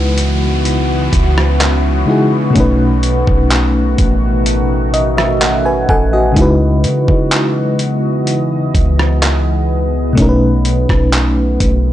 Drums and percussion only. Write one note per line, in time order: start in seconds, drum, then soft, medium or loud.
0.18 closed hi-hat medium
0.65 closed hi-hat medium
1.13 kick loud
1.13 closed hi-hat medium
1.38 cross-stick loud
1.60 clap loud
1.60 closed hi-hat medium
2.56 kick loud
2.56 closed hi-hat medium
3.03 closed hi-hat medium
3.27 kick loud
3.51 clap loud
3.51 closed hi-hat medium
3.98 kick loud
3.98 closed hi-hat medium
4.46 closed hi-hat medium
4.94 closed hi-hat medium
5.18 cross-stick loud
5.41 clap loud
5.41 closed hi-hat medium
5.89 kick loud
6.36 kick loud
6.36 closed hi-hat medium
6.84 closed hi-hat medium
7.08 kick loud
7.31 clap loud
7.31 closed hi-hat medium
7.79 closed hi-hat medium
8.27 closed hi-hat medium
8.75 kick loud
8.75 closed hi-hat medium
8.99 cross-stick medium
9.22 clap loud
9.22 closed hi-hat medium
10.17 kick loud
10.17 closed hi-hat medium
10.65 closed hi-hat medium
10.89 kick loud
10.89 cross-stick medium
11.13 clap loud
11.13 closed hi-hat medium
11.60 kick loud
11.60 closed hi-hat medium